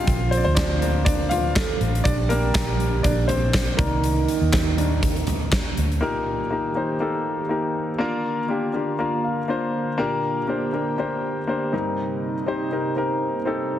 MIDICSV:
0, 0, Header, 1, 6, 480
1, 0, Start_track
1, 0, Key_signature, -2, "major"
1, 0, Tempo, 496278
1, 70, Time_signature, 4, 2, 24, 8
1, 13339, End_track
2, 0, Start_track
2, 0, Title_t, "Grand piano"
2, 0, Program_c, 0, 0
2, 0, Control_c, 0, 64, 127
2, 0, Note_on_c, 0, 65, 77
2, 0, Note_on_c, 0, 77, 108
2, 82, Control_c, 0, 64, 0
2, 234, Control_c, 0, 64, 127
2, 278, Note_off_c, 0, 65, 0
2, 300, Note_on_c, 0, 72, 89
2, 314, Note_on_c, 0, 60, 61
2, 317, Note_off_c, 0, 77, 0
2, 361, Note_on_c, 0, 74, 69
2, 367, Note_off_c, 0, 72, 0
2, 374, Note_off_c, 0, 60, 0
2, 430, Note_on_c, 0, 72, 100
2, 435, Note_off_c, 0, 74, 0
2, 447, Note_on_c, 0, 60, 70
2, 531, Note_on_c, 0, 74, 89
2, 534, Note_off_c, 0, 72, 0
2, 543, Note_off_c, 0, 60, 0
2, 548, Note_on_c, 0, 62, 70
2, 780, Note_off_c, 0, 62, 0
2, 783, Note_on_c, 0, 53, 50
2, 786, Note_on_c, 0, 58, 51
2, 794, Note_on_c, 0, 62, 55
2, 1000, Note_off_c, 0, 74, 0
2, 1014, Note_on_c, 0, 74, 96
2, 1020, Note_off_c, 0, 62, 0
2, 1034, Note_on_c, 0, 62, 80
2, 1115, Note_off_c, 0, 53, 0
2, 1116, Note_off_c, 0, 58, 0
2, 1250, Note_on_c, 0, 77, 90
2, 1254, Note_off_c, 0, 62, 0
2, 1268, Note_off_c, 0, 74, 0
2, 1273, Note_on_c, 0, 65, 71
2, 1950, Note_off_c, 0, 65, 0
2, 1971, Note_on_c, 0, 74, 100
2, 1990, Note_on_c, 0, 62, 72
2, 1999, Note_off_c, 0, 77, 0
2, 1999, Control_c, 0, 64, 0
2, 2159, Control_c, 0, 64, 127
2, 2211, Note_off_c, 0, 62, 0
2, 2215, Note_on_c, 0, 70, 93
2, 2223, Note_on_c, 0, 55, 53
2, 2225, Note_off_c, 0, 74, 0
2, 2228, Note_on_c, 0, 58, 75
2, 2233, Note_on_c, 0, 62, 63
2, 2554, Note_off_c, 0, 55, 0
2, 2559, Note_off_c, 0, 62, 0
2, 2910, Note_off_c, 0, 58, 0
2, 2932, Note_on_c, 0, 74, 84
2, 2956, Note_on_c, 0, 62, 74
2, 2961, Note_off_c, 0, 70, 0
2, 3160, Note_off_c, 0, 74, 0
2, 3169, Note_on_c, 0, 72, 82
2, 3173, Note_off_c, 0, 62, 0
2, 3192, Note_on_c, 0, 60, 77
2, 3634, Note_off_c, 0, 60, 0
2, 3646, Note_on_c, 0, 70, 71
2, 3652, Note_on_c, 0, 51, 56
2, 3660, Note_on_c, 0, 58, 61
2, 3665, Note_on_c, 0, 74, 59
2, 3670, Note_off_c, 0, 72, 0
2, 3677, Control_c, 0, 64, 0
2, 3852, Control_c, 0, 64, 127
2, 3987, Note_off_c, 0, 51, 0
2, 3994, Note_off_c, 0, 74, 0
2, 4605, Note_off_c, 0, 58, 0
2, 4613, Note_on_c, 0, 51, 45
2, 4619, Note_on_c, 0, 58, 41
2, 4623, Note_on_c, 0, 62, 56
2, 4833, Note_off_c, 0, 51, 0
2, 4836, Note_off_c, 0, 58, 0
2, 4838, Note_off_c, 0, 62, 0
2, 5534, Note_off_c, 0, 70, 0
2, 5809, Note_on_c, 0, 58, 80
2, 5813, Note_on_c, 0, 63, 73
2, 5818, Note_on_c, 0, 46, 58
2, 5819, Note_on_c, 0, 67, 69
2, 5825, Note_on_c, 0, 70, 89
2, 5832, Control_c, 0, 64, 0
2, 5988, Control_c, 0, 64, 127
2, 6192, Note_off_c, 0, 58, 0
2, 6194, Note_off_c, 0, 63, 0
2, 6197, Note_off_c, 0, 67, 0
2, 6200, Note_off_c, 0, 70, 0
2, 6291, Note_on_c, 0, 58, 59
2, 6299, Note_on_c, 0, 63, 59
2, 6301, Note_on_c, 0, 67, 54
2, 6312, Note_on_c, 0, 70, 71
2, 6485, Note_off_c, 0, 58, 0
2, 6488, Note_off_c, 0, 63, 0
2, 6490, Note_off_c, 0, 67, 0
2, 6495, Note_off_c, 0, 70, 0
2, 6500, Note_off_c, 0, 46, 0
2, 6531, Note_on_c, 0, 58, 49
2, 6536, Note_on_c, 0, 63, 55
2, 6541, Note_on_c, 0, 67, 49
2, 6548, Note_on_c, 0, 72, 68
2, 6724, Note_off_c, 0, 58, 0
2, 6727, Note_off_c, 0, 63, 0
2, 6729, Note_off_c, 0, 67, 0
2, 6733, Note_off_c, 0, 72, 0
2, 6772, Note_on_c, 0, 58, 65
2, 6776, Note_on_c, 0, 63, 57
2, 6785, Note_on_c, 0, 67, 62
2, 6789, Note_on_c, 0, 69, 68
2, 7154, Note_off_c, 0, 58, 0
2, 7156, Note_off_c, 0, 63, 0
2, 7161, Note_off_c, 0, 67, 0
2, 7163, Note_off_c, 0, 69, 0
2, 7245, Note_on_c, 0, 58, 62
2, 7248, Note_on_c, 0, 63, 62
2, 7257, Note_on_c, 0, 67, 61
2, 7260, Note_on_c, 0, 70, 69
2, 7631, Note_off_c, 0, 58, 0
2, 7632, Note_off_c, 0, 63, 0
2, 7637, Note_off_c, 0, 67, 0
2, 7638, Note_off_c, 0, 70, 0
2, 7722, Note_on_c, 0, 58, 87
2, 7728, Note_on_c, 0, 62, 74
2, 7735, Note_on_c, 0, 65, 83
2, 7743, Note_on_c, 0, 70, 98
2, 7754, Control_c, 0, 64, 0
2, 7945, Control_c, 0, 64, 127
2, 8110, Note_off_c, 0, 58, 0
2, 8112, Note_off_c, 0, 62, 0
2, 8116, Note_off_c, 0, 65, 0
2, 8120, Note_off_c, 0, 70, 0
2, 8208, Note_on_c, 0, 58, 64
2, 8212, Note_on_c, 0, 62, 59
2, 8219, Note_on_c, 0, 65, 59
2, 8225, Note_on_c, 0, 67, 73
2, 8404, Note_off_c, 0, 58, 0
2, 8406, Note_off_c, 0, 62, 0
2, 8409, Note_off_c, 0, 65, 0
2, 8412, Note_off_c, 0, 67, 0
2, 8449, Note_on_c, 0, 58, 58
2, 8454, Note_on_c, 0, 62, 54
2, 8461, Note_on_c, 0, 65, 51
2, 8469, Note_on_c, 0, 67, 64
2, 8644, Note_off_c, 0, 58, 0
2, 8647, Note_off_c, 0, 62, 0
2, 8651, Note_off_c, 0, 65, 0
2, 8654, Note_off_c, 0, 67, 0
2, 8692, Note_on_c, 0, 58, 69
2, 8696, Note_on_c, 0, 62, 63
2, 8704, Note_on_c, 0, 65, 65
2, 8707, Note_on_c, 0, 70, 74
2, 8939, Note_on_c, 0, 77, 50
2, 9075, Note_off_c, 0, 58, 0
2, 9077, Note_off_c, 0, 62, 0
2, 9081, Note_off_c, 0, 65, 0
2, 9082, Note_off_c, 0, 70, 0
2, 9164, Note_off_c, 0, 77, 0
2, 9170, Note_on_c, 0, 58, 66
2, 9176, Note_on_c, 0, 62, 62
2, 9180, Note_on_c, 0, 84, 52
2, 9184, Note_on_c, 0, 65, 64
2, 9189, Note_on_c, 0, 72, 79
2, 9554, Note_off_c, 0, 58, 0
2, 9557, Note_off_c, 0, 62, 0
2, 9561, Note_off_c, 0, 65, 0
2, 9564, Note_off_c, 0, 72, 0
2, 9628, Note_off_c, 0, 84, 0
2, 9649, Note_on_c, 0, 58, 94
2, 9654, Note_on_c, 0, 62, 81
2, 9658, Note_on_c, 0, 46, 60
2, 9661, Note_on_c, 0, 67, 81
2, 9667, Note_on_c, 0, 70, 96
2, 9675, Control_c, 0, 64, 0
2, 9854, Control_c, 0, 64, 127
2, 10034, Note_off_c, 0, 58, 0
2, 10037, Note_off_c, 0, 62, 0
2, 10040, Note_off_c, 0, 67, 0
2, 10043, Note_off_c, 0, 70, 0
2, 10133, Note_on_c, 0, 58, 66
2, 10138, Note_on_c, 0, 62, 63
2, 10146, Note_on_c, 0, 67, 57
2, 10150, Note_on_c, 0, 72, 68
2, 10327, Note_off_c, 0, 58, 0
2, 10330, Note_off_c, 0, 62, 0
2, 10334, Note_off_c, 0, 67, 0
2, 10336, Note_off_c, 0, 72, 0
2, 10343, Note_off_c, 0, 46, 0
2, 10377, Note_on_c, 0, 58, 61
2, 10379, Note_on_c, 0, 62, 49
2, 10389, Note_on_c, 0, 67, 51
2, 10391, Note_on_c, 0, 70, 64
2, 10570, Note_off_c, 0, 58, 0
2, 10571, Note_off_c, 0, 62, 0
2, 10576, Note_off_c, 0, 67, 0
2, 10577, Note_off_c, 0, 70, 0
2, 10618, Note_on_c, 0, 58, 66
2, 10623, Note_on_c, 0, 62, 62
2, 10631, Note_on_c, 0, 67, 65
2, 10635, Note_on_c, 0, 72, 73
2, 10999, Note_off_c, 0, 58, 0
2, 11002, Note_off_c, 0, 62, 0
2, 11006, Note_off_c, 0, 67, 0
2, 11008, Note_off_c, 0, 72, 0
2, 11097, Note_on_c, 0, 58, 67
2, 11102, Note_on_c, 0, 62, 59
2, 11110, Note_on_c, 0, 67, 57
2, 11115, Note_on_c, 0, 72, 78
2, 11334, Note_off_c, 0, 67, 0
2, 11334, Note_on_c, 0, 60, 61
2, 11341, Note_on_c, 0, 63, 64
2, 11342, Note_off_c, 0, 58, 0
2, 11344, Note_off_c, 0, 62, 0
2, 11344, Note_on_c, 0, 43, 53
2, 11349, Note_on_c, 0, 67, 60
2, 11350, Note_off_c, 0, 72, 0
2, 11354, Note_on_c, 0, 70, 70
2, 11359, Control_c, 0, 64, 0
2, 11547, Control_c, 0, 64, 127
2, 11928, Note_off_c, 0, 60, 0
2, 11931, Note_off_c, 0, 63, 0
2, 11935, Note_off_c, 0, 67, 0
2, 11938, Note_off_c, 0, 70, 0
2, 12027, Note_off_c, 0, 43, 0
2, 12054, Note_on_c, 0, 60, 62
2, 12060, Note_on_c, 0, 63, 59
2, 12066, Note_on_c, 0, 67, 64
2, 12072, Note_on_c, 0, 72, 76
2, 12249, Note_off_c, 0, 60, 0
2, 12252, Note_off_c, 0, 63, 0
2, 12255, Note_off_c, 0, 67, 0
2, 12258, Note_off_c, 0, 72, 0
2, 12294, Note_on_c, 0, 60, 57
2, 12299, Note_on_c, 0, 63, 58
2, 12306, Note_on_c, 0, 67, 50
2, 12310, Note_on_c, 0, 70, 62
2, 12489, Note_off_c, 0, 60, 0
2, 12492, Note_off_c, 0, 63, 0
2, 12495, Note_off_c, 0, 67, 0
2, 12497, Note_off_c, 0, 70, 0
2, 12532, Note_on_c, 0, 60, 64
2, 12539, Note_on_c, 0, 63, 62
2, 12543, Note_on_c, 0, 67, 59
2, 12553, Note_on_c, 0, 70, 72
2, 12918, Note_off_c, 0, 60, 0
2, 12921, Note_off_c, 0, 63, 0
2, 12923, Note_off_c, 0, 67, 0
2, 12928, Note_off_c, 0, 70, 0
2, 13011, Note_on_c, 0, 60, 73
2, 13019, Note_on_c, 0, 63, 65
2, 13027, Note_on_c, 0, 67, 61
2, 13030, Note_on_c, 0, 69, 73
2, 13339, Note_off_c, 0, 60, 0
2, 13339, Note_off_c, 0, 63, 0
2, 13339, Note_off_c, 0, 67, 0
2, 13339, Note_off_c, 0, 69, 0
2, 13339, End_track
3, 0, Start_track
3, 0, Title_t, "French horn section"
3, 0, Program_c, 1, 60
3, 75, Note_on_c, 1, 65, 86
3, 78, Note_on_c, 1, 53, 76
3, 1246, Note_off_c, 1, 65, 0
3, 1247, Note_off_c, 1, 53, 0
3, 1506, Note_on_c, 1, 69, 86
3, 1507, Note_on_c, 1, 57, 82
3, 1741, Note_off_c, 1, 57, 0
3, 1741, Note_off_c, 1, 69, 0
3, 1983, Note_on_c, 1, 55, 91
3, 1984, Note_on_c, 1, 67, 91
3, 3393, Note_off_c, 1, 55, 0
3, 3393, Note_off_c, 1, 67, 0
3, 3663, Note_on_c, 1, 63, 101
3, 3664, Note_on_c, 1, 51, 92
3, 5543, Note_off_c, 1, 51, 0
3, 5543, Note_off_c, 1, 63, 0
3, 13339, End_track
4, 0, Start_track
4, 0, Title_t, "Analog synth pad"
4, 0, Program_c, 2, 89
4, 5818, Note_on_c, 2, 67, 74
4, 5820, Note_on_c, 2, 51, 66
4, 5821, Note_on_c, 2, 58, 61
4, 7721, Note_off_c, 2, 67, 0
4, 7722, Note_off_c, 2, 51, 0
4, 7736, Note_on_c, 2, 50, 59
4, 7736, Note_on_c, 2, 65, 72
4, 9642, Note_off_c, 2, 65, 0
4, 9657, Note_on_c, 2, 67, 78
4, 11307, Note_off_c, 2, 50, 0
4, 11307, Note_off_c, 2, 58, 0
4, 11325, Note_off_c, 2, 67, 0
4, 11337, Note_on_c, 2, 63, 77
4, 11338, Note_on_c, 2, 58, 67
4, 11339, Note_on_c, 2, 48, 65
4, 13339, Note_off_c, 2, 48, 0
4, 13339, Note_off_c, 2, 58, 0
4, 13339, Note_off_c, 2, 63, 0
4, 13339, End_track
5, 0, Start_track
5, 0, Title_t, "Fingered electric bass"
5, 0, Program_c, 3, 33
5, 72, Note_on_c, 3, 34, 102
5, 418, Note_off_c, 3, 34, 0
5, 445, Note_on_c, 3, 38, 90
5, 1708, Note_off_c, 3, 38, 0
5, 1748, Note_on_c, 3, 33, 83
5, 1970, Note_off_c, 3, 33, 0
5, 1987, Note_on_c, 3, 34, 98
5, 2432, Note_off_c, 3, 34, 0
5, 2942, Note_on_c, 3, 34, 112
5, 3625, Note_off_c, 3, 34, 0
5, 3662, Note_on_c, 3, 36, 82
5, 4108, Note_off_c, 3, 36, 0
5, 4268, Note_on_c, 3, 39, 85
5, 5538, Note_off_c, 3, 39, 0
5, 5586, Note_on_c, 3, 38, 83
5, 5807, Note_off_c, 3, 38, 0
5, 13339, End_track
6, 0, Start_track
6, 0, Title_t, "Drums"
6, 72, Note_on_c, 9, 36, 94
6, 75, Note_on_c, 9, 42, 74
6, 169, Note_off_c, 9, 36, 0
6, 172, Note_off_c, 9, 42, 0
6, 314, Note_on_c, 9, 42, 76
6, 411, Note_off_c, 9, 42, 0
6, 551, Note_on_c, 9, 36, 115
6, 551, Note_on_c, 9, 39, 92
6, 554, Note_on_c, 9, 42, 88
6, 556, Note_on_c, 9, 38, 119
6, 647, Note_off_c, 9, 36, 0
6, 648, Note_off_c, 9, 39, 0
6, 651, Note_off_c, 9, 42, 0
6, 652, Note_off_c, 9, 38, 0
6, 794, Note_on_c, 9, 42, 67
6, 891, Note_off_c, 9, 42, 0
6, 1028, Note_on_c, 9, 36, 111
6, 1031, Note_on_c, 9, 42, 91
6, 1124, Note_off_c, 9, 36, 0
6, 1128, Note_off_c, 9, 42, 0
6, 1265, Note_on_c, 9, 42, 78
6, 1270, Note_on_c, 9, 43, 64
6, 1362, Note_off_c, 9, 42, 0
6, 1367, Note_off_c, 9, 43, 0
6, 1508, Note_on_c, 9, 39, 89
6, 1509, Note_on_c, 9, 36, 113
6, 1513, Note_on_c, 9, 38, 111
6, 1514, Note_on_c, 9, 42, 88
6, 1605, Note_off_c, 9, 36, 0
6, 1605, Note_off_c, 9, 39, 0
6, 1609, Note_off_c, 9, 38, 0
6, 1611, Note_off_c, 9, 42, 0
6, 1750, Note_on_c, 9, 42, 69
6, 1847, Note_off_c, 9, 42, 0
6, 1888, Note_on_c, 9, 42, 55
6, 1985, Note_off_c, 9, 42, 0
6, 1986, Note_on_c, 9, 36, 92
6, 1989, Note_on_c, 9, 42, 75
6, 2083, Note_off_c, 9, 36, 0
6, 2085, Note_off_c, 9, 42, 0
6, 2225, Note_on_c, 9, 42, 77
6, 2322, Note_off_c, 9, 42, 0
6, 2464, Note_on_c, 9, 39, 91
6, 2465, Note_on_c, 9, 36, 124
6, 2467, Note_on_c, 9, 42, 94
6, 2469, Note_on_c, 9, 38, 116
6, 2561, Note_off_c, 9, 39, 0
6, 2562, Note_off_c, 9, 36, 0
6, 2564, Note_off_c, 9, 42, 0
6, 2566, Note_off_c, 9, 38, 0
6, 2709, Note_on_c, 9, 42, 68
6, 2805, Note_off_c, 9, 42, 0
6, 2943, Note_on_c, 9, 36, 106
6, 2945, Note_on_c, 9, 42, 88
6, 3040, Note_off_c, 9, 36, 0
6, 3042, Note_off_c, 9, 42, 0
6, 3180, Note_on_c, 9, 42, 76
6, 3185, Note_on_c, 9, 43, 67
6, 3276, Note_off_c, 9, 42, 0
6, 3282, Note_off_c, 9, 43, 0
6, 3422, Note_on_c, 9, 39, 86
6, 3424, Note_on_c, 9, 36, 100
6, 3426, Note_on_c, 9, 38, 111
6, 3428, Note_on_c, 9, 42, 90
6, 3519, Note_off_c, 9, 39, 0
6, 3521, Note_off_c, 9, 36, 0
6, 3523, Note_off_c, 9, 38, 0
6, 3525, Note_off_c, 9, 42, 0
6, 3662, Note_on_c, 9, 43, 67
6, 3663, Note_on_c, 9, 36, 117
6, 3663, Note_on_c, 9, 42, 69
6, 3759, Note_off_c, 9, 36, 0
6, 3759, Note_off_c, 9, 42, 0
6, 3759, Note_off_c, 9, 43, 0
6, 3904, Note_on_c, 9, 42, 83
6, 4001, Note_off_c, 9, 42, 0
6, 4144, Note_on_c, 9, 42, 78
6, 4240, Note_off_c, 9, 42, 0
6, 4382, Note_on_c, 9, 39, 97
6, 4383, Note_on_c, 9, 36, 117
6, 4384, Note_on_c, 9, 42, 90
6, 4386, Note_on_c, 9, 38, 124
6, 4479, Note_off_c, 9, 39, 0
6, 4480, Note_off_c, 9, 36, 0
6, 4481, Note_off_c, 9, 42, 0
6, 4483, Note_off_c, 9, 38, 0
6, 4625, Note_on_c, 9, 42, 72
6, 4722, Note_off_c, 9, 42, 0
6, 4863, Note_on_c, 9, 36, 101
6, 4867, Note_on_c, 9, 42, 96
6, 4959, Note_off_c, 9, 36, 0
6, 4964, Note_off_c, 9, 42, 0
6, 4996, Note_on_c, 9, 42, 44
6, 5093, Note_off_c, 9, 42, 0
6, 5095, Note_on_c, 9, 42, 74
6, 5100, Note_on_c, 9, 43, 61
6, 5192, Note_off_c, 9, 42, 0
6, 5197, Note_off_c, 9, 43, 0
6, 5339, Note_on_c, 9, 39, 93
6, 5342, Note_on_c, 9, 36, 107
6, 5343, Note_on_c, 9, 38, 110
6, 5345, Note_on_c, 9, 42, 85
6, 5436, Note_off_c, 9, 39, 0
6, 5438, Note_off_c, 9, 36, 0
6, 5440, Note_off_c, 9, 38, 0
6, 5441, Note_off_c, 9, 42, 0
6, 5584, Note_on_c, 9, 42, 69
6, 5681, Note_off_c, 9, 42, 0
6, 5723, Note_on_c, 9, 42, 48
6, 5820, Note_off_c, 9, 42, 0
6, 13339, End_track
0, 0, End_of_file